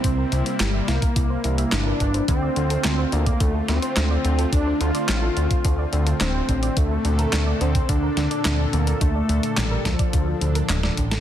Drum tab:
HH |x-xxx-xxx-xxx-xx|x-xxx-xxx-xxx-xx|x-xxx-xxx-xxx-xx|x-xxx-xxx-xxx-xx|
CP |----x-------x---|----x-------x---|----x-------x---|----x-------x---|
SD |----o-o-----o---|----o-----o-o---|----o-------o---|----o-----o-o---|
BD |o------oo-----o-|o------oo-------|o------oo-----o-|o------oo-------|

HH |x-xxx-xxx-xxx-xx|
CP |----x-------x---|
SD |----o-o-----oo-o|
BD |o-----ooo-----o-|